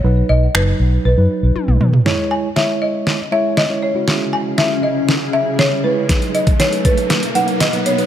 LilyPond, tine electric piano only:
\new Staff \with { instrumentName = "Tine electric piano" } { \time 4/4 \key cis \minor \tempo 4 = 119 <fis dis' b'>8. r16 <fis dis' b'>4 r16 <fis dis' b'>4. r16 | <gis e' cis''>8. r16 <gis e' cis''>4~ <gis e' cis''>16 r16 <gis e' cis''>8 r16 <gis e' cis''>8 <gis e' fis'>16~ | <gis e' fis'>4. r2 <gis e' cis''>8 | <fis dis' b'>8. r16 <fis dis' b'>4~ <fis dis' b'>16 r16 <fis dis' b'>8 r16 <fis dis' b'>8 <fis dis' b'>16 | }